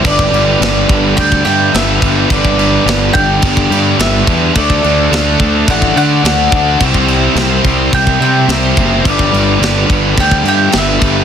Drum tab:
CC |x-x-x-x-x-x-x-x-|x-x-x-x-x-x-x-x-|x-x-x-x-x-x-x-x-|x-x-x-x-x-x-x-x-|
SD |----o-------o---|----o-------o---|----o-------o---|----o-------o---|
BD |oo----o-oo----o-|oo----o-oo----o-|oo----o-oo----o-|oo----o-oo----o-|

CC |x-x-x-x-x-x-x-x-|
SD |----o-------o---|
BD |oo----o-oo----o-|